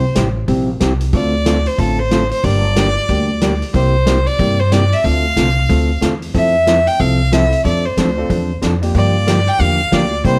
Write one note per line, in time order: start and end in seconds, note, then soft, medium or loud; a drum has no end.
0.00 0.15 C5 medium
0.15 0.43 A1 medium
0.15 0.27 C3 medium
0.15 0.27 G3 medium
0.15 0.27 C4 medium
0.15 0.27 E4 medium
0.15 0.27 G4 medium
0.15 snare medium
0.15 closed hi-hat medium
0.48 0.76 A#1 medium
0.48 0.69 C3 medium
0.48 0.69 G3 medium
0.48 0.69 C4 medium
0.48 0.69 E4 medium
0.48 0.69 G4 medium
0.48 kick soft
0.48 open hi-hat soft
0.80 1.08 C2 medium
0.80 0.92 C3 medium
0.80 0.92 G3 medium
0.80 0.92 C4 medium
0.80 0.92 E4 medium
0.80 0.92 G4 medium
0.80 snare medium
0.80 closed hi-hat medium
1.01 open hi-hat soft
1.13 1.65 D2 medium
1.13 1.34 D3 medium
1.13 1.34 A3 medium
1.13 1.34 C4 medium
1.13 1.34 F4 medium
1.13 1.34 A4 medium
1.13 1.69 D5 medium
1.13 kick soft
1.13 open hi-hat soft
1.45 1.57 D3 medium
1.45 1.57 A3 medium
1.45 1.57 C4 medium
1.45 1.57 F4 medium
1.45 1.57 A4 medium
1.45 snare medium
1.45 closed hi-hat medium
1.66 1.81 C5 medium
1.66 open hi-hat soft
1.78 2.31 A1 medium
1.78 1.99 D3 medium
1.78 1.99 A3 medium
1.78 1.99 C4 medium
1.78 1.99 F4 medium
1.78 2.00 A4 medium
1.78 2.01 A4 medium
1.78 kick soft
1.78 open hi-hat soft
1.99 2.31 C5 medium
2.11 2.22 D3 medium
2.11 2.22 A3 medium
2.11 2.22 C4 medium
2.11 2.23 F4 medium
2.11 2.23 A4 medium
2.11 snare medium
2.11 closed hi-hat soft
2.31 2.46 C5 medium
2.31 open hi-hat soft
2.43 2.96 G1 loud
2.43 2.64 D3 medium
2.43 2.64 G3 medium
2.43 2.65 A#3 medium
2.43 2.65 D4 medium
2.43 2.65 G4 medium
2.43 3.62 D5 loud
2.43 kick soft
2.43 open hi-hat soft
2.76 2.87 D3 medium
2.76 2.87 G3 medium
2.76 2.88 A#3 medium
2.76 2.88 D4 medium
2.76 2.88 G4 medium
2.76 snare medium
2.76 closed hi-hat medium
3.09 3.61 D2 medium
3.09 3.30 D3 soft
3.09 3.30 G3 medium
3.09 3.30 A#3 medium
3.09 3.30 D4 medium
3.09 3.30 G4 medium
3.09 kick soft
3.09 open hi-hat soft
3.41 3.52 D3 medium
3.41 3.53 G3 medium
3.41 3.53 A#3 medium
3.41 3.53 D4 medium
3.41 3.53 G4 medium
3.41 snare medium
3.41 closed hi-hat medium
3.62 open hi-hat soft
3.73 4.26 C2 medium
3.73 3.94 C3 medium
3.73 3.95 G3 medium
3.73 3.95 A#3 medium
3.73 3.95 E4 medium
3.73 3.95 G4 medium
3.73 4.28 C5 medium
3.73 kick soft
3.73 open hi-hat soft
4.06 4.17 C3 medium
4.06 4.18 G3 medium
4.06 4.18 A#3 medium
4.06 4.18 E4 medium
4.06 4.18 G4 medium
4.06 snare medium
4.06 closed hi-hat medium
4.27 4.61 D5 medium
4.27 open hi-hat soft
4.39 4.91 G2 medium
4.39 4.60 C3 soft
4.39 4.60 G3 medium
4.39 4.60 A#3 medium
4.39 4.60 E4 medium
4.39 4.60 G4 medium
4.39 kick soft
4.39 open hi-hat soft
4.60 4.74 C5 medium
4.72 4.83 C3 medium
4.72 4.83 G3 medium
4.72 4.83 A#3 medium
4.72 4.83 E4 medium
4.72 4.83 G4 medium
4.72 4.95 D5 medium
4.72 snare medium
4.72 closed hi-hat medium
4.92 5.06 E5 medium
4.92 open hi-hat soft
5.04 5.30 D2 medium
5.04 5.25 D3 soft
5.04 5.25 A3 medium
5.04 5.25 C4 medium
5.04 5.25 F4 medium
5.04 5.25 A4 medium
5.04 6.02 F5 loud
5.04 kick soft
5.04 open hi-hat soft
5.36 5.64 C2 medium
5.36 5.48 D3 medium
5.36 5.48 A3 medium
5.36 5.48 C4 medium
5.36 5.48 F4 medium
5.36 5.48 A4 medium
5.36 snare medium
5.36 closed hi-hat medium
5.69 5.97 D2 medium
5.69 5.90 D3 soft
5.69 5.90 A3 medium
5.69 5.90 C4 medium
5.69 5.90 F4 medium
5.69 5.91 A4 medium
5.69 kick soft
5.69 open hi-hat soft
6.01 6.30 E2 medium
6.01 6.13 D3 medium
6.01 6.13 A3 medium
6.01 6.13 C4 medium
6.01 6.13 F4 medium
6.01 6.13 A4 medium
6.01 snare medium
6.01 closed hi-hat medium
6.22 open hi-hat soft
6.34 6.87 F2 medium
6.34 6.55 F3 medium
6.34 6.55 C4 medium
6.34 6.55 E4 medium
6.34 6.55 A4 medium
6.34 6.89 E5 medium
6.34 kick soft
6.34 open hi-hat soft
6.67 6.78 F3 medium
6.67 6.78 C4 medium
6.67 6.79 E4 medium
6.67 6.79 A4 medium
6.67 snare medium
6.67 closed hi-hat medium
6.87 7.01 G5 loud
6.87 open hi-hat soft
7.00 7.52 C2 medium
7.00 7.20 F3 soft
7.00 7.20 C4 medium
7.00 7.21 E4 medium
7.00 7.21 A4 medium
7.00 7.34 F5 medium
7.00 kick soft
7.00 open hi-hat soft
7.32 7.43 F3 medium
7.32 7.50 C4 medium
7.32 7.44 C4 medium
7.32 7.50 E4 medium
7.32 7.44 E4 medium
7.32 7.50 F4 medium
7.32 7.51 A4 medium
7.32 7.44 A4 medium
7.32 7.64 E5 medium
7.32 snare medium
7.32 closed hi-hat medium
7.52 open hi-hat soft
7.64 7.91 F2 medium
7.64 7.85 F3 medium
7.64 7.86 C4 medium
7.64 7.86 D4 medium
7.64 7.86 A4 medium
7.64 7.87 D5 medium
7.64 kick soft
7.64 open hi-hat soft
7.85 8.50 C5 medium
7.97 8.25 D2 medium
7.97 8.08 F3 medium
7.97 8.09 C4 medium
7.97 8.09 D4 medium
7.97 8.09 A4 medium
7.97 snare medium
7.97 closed hi-hat medium
8.17 8.28 C4 medium
8.17 8.28 D4 medium
8.17 8.29 F4 medium
8.17 8.29 A4 medium
8.29 8.58 E2 medium
8.29 8.50 F3 medium
8.29 8.51 C4 soft
8.29 8.51 D4 medium
8.29 8.51 A4 medium
8.29 kick soft
8.29 open hi-hat soft
8.62 8.90 F2 medium
8.62 8.73 F3 medium
8.62 8.73 C4 medium
8.62 8.74 D4 medium
8.62 8.74 A4 medium
8.62 snare medium
8.62 closed hi-hat soft
8.82 9.25 A#3 medium
8.82 9.25 D4 medium
8.82 9.25 F4 medium
8.82 9.25 G4 medium
8.82 open hi-hat soft
8.95 9.47 G2 medium
8.95 9.15 D3 soft
8.95 9.16 F3 medium
8.95 9.16 A#3 medium
8.95 9.16 D4 medium
8.95 9.16 G4 medium
8.95 9.50 D5 medium
8.95 kick soft
8.95 open hi-hat soft
9.27 9.38 D3 medium
9.27 9.38 F3 medium
9.27 9.38 A#3 medium
9.27 9.39 D4 medium
9.27 9.39 G4 medium
9.27 snare medium
9.27 closed hi-hat medium
9.47 9.62 G5 loud
9.47 open hi-hat soft
9.59 9.87 E2 medium
9.59 9.80 D3 medium
9.59 9.80 F3 medium
9.59 9.80 A#3 medium
9.59 9.80 D4 medium
9.59 9.81 G4 medium
9.59 9.96 F5 loud
9.59 kick soft
9.59 open hi-hat soft
9.92 10.20 D2 medium
9.92 10.03 D3 medium
9.92 10.03 F3 medium
9.92 10.10 A#3 medium
9.92 10.03 A#3 medium
9.92 10.10 D4 medium
9.92 10.04 D4 medium
9.92 10.10 F4 medium
9.92 10.04 G4 medium
9.92 10.11 G4 medium
9.92 10.25 D5 medium
9.92 snare medium
9.92 closed hi-hat soft
10.24 10.39 C2 medium
10.24 10.39 C3 medium
10.24 10.39 G3 medium
10.24 10.39 A#3 medium
10.24 10.39 C4 medium
10.24 10.39 E4 medium
10.24 10.39 G4 medium
10.24 10.39 C5 medium
10.24 kick soft
10.24 open hi-hat soft